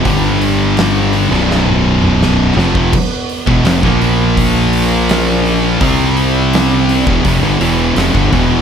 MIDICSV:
0, 0, Header, 1, 5, 480
1, 0, Start_track
1, 0, Tempo, 719424
1, 32, Time_signature, 4, 2, 24, 8
1, 5749, End_track
2, 0, Start_track
2, 0, Title_t, "Synth drone"
2, 0, Program_c, 0, 95
2, 36, Note_on_c, 0, 62, 76
2, 39, Note_on_c, 0, 55, 79
2, 42, Note_on_c, 0, 69, 80
2, 865, Note_off_c, 0, 62, 0
2, 867, Note_off_c, 0, 55, 0
2, 868, Note_off_c, 0, 69, 0
2, 875, Note_on_c, 0, 78, 81
2, 877, Note_on_c, 0, 59, 92
2, 877, Note_on_c, 0, 73, 93
2, 2299, Note_off_c, 0, 73, 0
2, 2536, Note_off_c, 0, 78, 0
2, 2537, Note_off_c, 0, 59, 0
2, 2546, Note_on_c, 0, 58, 91
2, 2546, Note_on_c, 0, 65, 84
2, 2548, Note_on_c, 0, 72, 100
2, 3855, Note_off_c, 0, 58, 0
2, 3855, Note_off_c, 0, 65, 0
2, 3856, Note_off_c, 0, 72, 0
2, 3870, Note_on_c, 0, 60, 81
2, 3870, Note_on_c, 0, 74, 85
2, 3874, Note_on_c, 0, 67, 77
2, 4702, Note_off_c, 0, 60, 0
2, 4702, Note_off_c, 0, 74, 0
2, 4704, Note_off_c, 0, 67, 0
2, 4715, Note_on_c, 0, 52, 80
2, 4718, Note_on_c, 0, 59, 74
2, 4721, Note_on_c, 0, 66, 96
2, 5749, Note_off_c, 0, 52, 0
2, 5749, Note_off_c, 0, 59, 0
2, 5749, Note_off_c, 0, 66, 0
2, 5749, End_track
3, 0, Start_track
3, 0, Title_t, "Distorted electric guitar"
3, 0, Program_c, 1, 30
3, 35, Note_on_c, 1, 43, 122
3, 41, Note_on_c, 1, 50, 110
3, 41, Note_on_c, 1, 55, 121
3, 866, Note_off_c, 1, 43, 0
3, 868, Note_off_c, 1, 50, 0
3, 869, Note_off_c, 1, 55, 0
3, 875, Note_on_c, 1, 35, 83
3, 878, Note_on_c, 1, 42, 97
3, 882, Note_on_c, 1, 47, 98
3, 1705, Note_off_c, 1, 35, 0
3, 1707, Note_off_c, 1, 42, 0
3, 1709, Note_off_c, 1, 47, 0
3, 1713, Note_on_c, 1, 41, 89
3, 1719, Note_on_c, 1, 48, 94
3, 1723, Note_on_c, 1, 53, 116
3, 1945, Note_off_c, 1, 41, 0
3, 1948, Note_off_c, 1, 48, 0
3, 1950, Note_off_c, 1, 53, 0
3, 2314, Note_on_c, 1, 40, 101
3, 2320, Note_on_c, 1, 47, 108
3, 2425, Note_off_c, 1, 40, 0
3, 2428, Note_off_c, 1, 47, 0
3, 2433, Note_on_c, 1, 41, 95
3, 2439, Note_on_c, 1, 48, 98
3, 2545, Note_off_c, 1, 41, 0
3, 2553, Note_off_c, 1, 48, 0
3, 2553, Note_on_c, 1, 46, 95
3, 2558, Note_on_c, 1, 53, 90
3, 2563, Note_on_c, 1, 58, 94
3, 3865, Note_off_c, 1, 46, 0
3, 3867, Note_off_c, 1, 53, 0
3, 3870, Note_off_c, 1, 58, 0
3, 3875, Note_on_c, 1, 48, 108
3, 3878, Note_on_c, 1, 55, 99
3, 3881, Note_on_c, 1, 60, 109
3, 4706, Note_off_c, 1, 48, 0
3, 4707, Note_off_c, 1, 55, 0
3, 4709, Note_off_c, 1, 60, 0
3, 4718, Note_on_c, 1, 40, 94
3, 4723, Note_on_c, 1, 47, 107
3, 4827, Note_off_c, 1, 40, 0
3, 4830, Note_off_c, 1, 47, 0
3, 4837, Note_on_c, 1, 41, 90
3, 4841, Note_on_c, 1, 48, 94
3, 4947, Note_off_c, 1, 41, 0
3, 4949, Note_off_c, 1, 48, 0
3, 4951, Note_on_c, 1, 43, 92
3, 4955, Note_on_c, 1, 50, 95
3, 5064, Note_off_c, 1, 43, 0
3, 5066, Note_off_c, 1, 50, 0
3, 5067, Note_on_c, 1, 40, 101
3, 5070, Note_on_c, 1, 47, 108
3, 5076, Note_on_c, 1, 52, 106
3, 5302, Note_off_c, 1, 40, 0
3, 5303, Note_off_c, 1, 47, 0
3, 5307, Note_off_c, 1, 52, 0
3, 5310, Note_on_c, 1, 41, 87
3, 5314, Note_on_c, 1, 48, 105
3, 5423, Note_off_c, 1, 41, 0
3, 5426, Note_off_c, 1, 48, 0
3, 5434, Note_on_c, 1, 43, 98
3, 5435, Note_on_c, 1, 50, 127
3, 5545, Note_off_c, 1, 43, 0
3, 5546, Note_off_c, 1, 50, 0
3, 5549, Note_on_c, 1, 40, 95
3, 5554, Note_on_c, 1, 47, 111
3, 5557, Note_on_c, 1, 52, 126
3, 5749, Note_off_c, 1, 40, 0
3, 5749, Note_off_c, 1, 47, 0
3, 5749, Note_off_c, 1, 52, 0
3, 5749, End_track
4, 0, Start_track
4, 0, Title_t, "Fingered electric bass"
4, 0, Program_c, 2, 33
4, 36, Note_on_c, 2, 31, 104
4, 847, Note_off_c, 2, 31, 0
4, 873, Note_on_c, 2, 23, 96
4, 1685, Note_off_c, 2, 23, 0
4, 1709, Note_on_c, 2, 29, 98
4, 1933, Note_off_c, 2, 29, 0
4, 2315, Note_on_c, 2, 28, 82
4, 2425, Note_off_c, 2, 28, 0
4, 2431, Note_on_c, 2, 29, 105
4, 2543, Note_off_c, 2, 29, 0
4, 2556, Note_on_c, 2, 34, 110
4, 3847, Note_off_c, 2, 34, 0
4, 3875, Note_on_c, 2, 36, 108
4, 4687, Note_off_c, 2, 36, 0
4, 4715, Note_on_c, 2, 28, 93
4, 4825, Note_off_c, 2, 28, 0
4, 4834, Note_on_c, 2, 29, 112
4, 4944, Note_off_c, 2, 29, 0
4, 4953, Note_on_c, 2, 31, 104
4, 5064, Note_off_c, 2, 31, 0
4, 5070, Note_on_c, 2, 28, 89
4, 5294, Note_off_c, 2, 28, 0
4, 5309, Note_on_c, 2, 29, 94
4, 5422, Note_off_c, 2, 29, 0
4, 5433, Note_on_c, 2, 31, 108
4, 5544, Note_off_c, 2, 31, 0
4, 5554, Note_on_c, 2, 28, 95
4, 5749, Note_off_c, 2, 28, 0
4, 5749, End_track
5, 0, Start_track
5, 0, Title_t, "Drums"
5, 34, Note_on_c, 9, 46, 79
5, 36, Note_on_c, 9, 36, 117
5, 101, Note_off_c, 9, 46, 0
5, 103, Note_off_c, 9, 36, 0
5, 277, Note_on_c, 9, 46, 57
5, 344, Note_off_c, 9, 46, 0
5, 514, Note_on_c, 9, 46, 76
5, 526, Note_on_c, 9, 38, 127
5, 581, Note_off_c, 9, 46, 0
5, 593, Note_off_c, 9, 38, 0
5, 754, Note_on_c, 9, 46, 57
5, 820, Note_off_c, 9, 46, 0
5, 889, Note_on_c, 9, 38, 36
5, 956, Note_off_c, 9, 38, 0
5, 1007, Note_on_c, 9, 38, 70
5, 1074, Note_off_c, 9, 38, 0
5, 1112, Note_on_c, 9, 48, 61
5, 1178, Note_off_c, 9, 48, 0
5, 1351, Note_on_c, 9, 47, 83
5, 1417, Note_off_c, 9, 47, 0
5, 1485, Note_on_c, 9, 38, 104
5, 1552, Note_off_c, 9, 38, 0
5, 1726, Note_on_c, 9, 38, 95
5, 1793, Note_off_c, 9, 38, 0
5, 1836, Note_on_c, 9, 36, 108
5, 1902, Note_off_c, 9, 36, 0
5, 1955, Note_on_c, 9, 49, 110
5, 1957, Note_on_c, 9, 36, 121
5, 2022, Note_off_c, 9, 49, 0
5, 2023, Note_off_c, 9, 36, 0
5, 2197, Note_on_c, 9, 46, 65
5, 2264, Note_off_c, 9, 46, 0
5, 2317, Note_on_c, 9, 36, 114
5, 2384, Note_off_c, 9, 36, 0
5, 2435, Note_on_c, 9, 46, 90
5, 2447, Note_on_c, 9, 38, 115
5, 2502, Note_off_c, 9, 46, 0
5, 2514, Note_off_c, 9, 38, 0
5, 2557, Note_on_c, 9, 36, 106
5, 2571, Note_on_c, 9, 38, 34
5, 2623, Note_off_c, 9, 36, 0
5, 2638, Note_off_c, 9, 38, 0
5, 2679, Note_on_c, 9, 46, 59
5, 2746, Note_off_c, 9, 46, 0
5, 2918, Note_on_c, 9, 36, 97
5, 2919, Note_on_c, 9, 46, 100
5, 2984, Note_off_c, 9, 36, 0
5, 2985, Note_off_c, 9, 46, 0
5, 3155, Note_on_c, 9, 46, 75
5, 3222, Note_off_c, 9, 46, 0
5, 3397, Note_on_c, 9, 46, 93
5, 3409, Note_on_c, 9, 38, 124
5, 3464, Note_off_c, 9, 46, 0
5, 3476, Note_off_c, 9, 38, 0
5, 3641, Note_on_c, 9, 46, 55
5, 3707, Note_off_c, 9, 46, 0
5, 3875, Note_on_c, 9, 46, 93
5, 3876, Note_on_c, 9, 36, 121
5, 3942, Note_off_c, 9, 46, 0
5, 3943, Note_off_c, 9, 36, 0
5, 4116, Note_on_c, 9, 46, 60
5, 4183, Note_off_c, 9, 46, 0
5, 4359, Note_on_c, 9, 46, 90
5, 4371, Note_on_c, 9, 38, 119
5, 4426, Note_off_c, 9, 46, 0
5, 4438, Note_off_c, 9, 38, 0
5, 4598, Note_on_c, 9, 46, 66
5, 4664, Note_off_c, 9, 46, 0
5, 4717, Note_on_c, 9, 36, 120
5, 4783, Note_off_c, 9, 36, 0
5, 4834, Note_on_c, 9, 46, 93
5, 4836, Note_on_c, 9, 36, 110
5, 4901, Note_off_c, 9, 46, 0
5, 4903, Note_off_c, 9, 36, 0
5, 5076, Note_on_c, 9, 46, 70
5, 5143, Note_off_c, 9, 46, 0
5, 5314, Note_on_c, 9, 46, 88
5, 5326, Note_on_c, 9, 38, 109
5, 5380, Note_off_c, 9, 46, 0
5, 5392, Note_off_c, 9, 38, 0
5, 5436, Note_on_c, 9, 36, 100
5, 5503, Note_off_c, 9, 36, 0
5, 5556, Note_on_c, 9, 36, 99
5, 5556, Note_on_c, 9, 46, 52
5, 5623, Note_off_c, 9, 36, 0
5, 5623, Note_off_c, 9, 46, 0
5, 5749, End_track
0, 0, End_of_file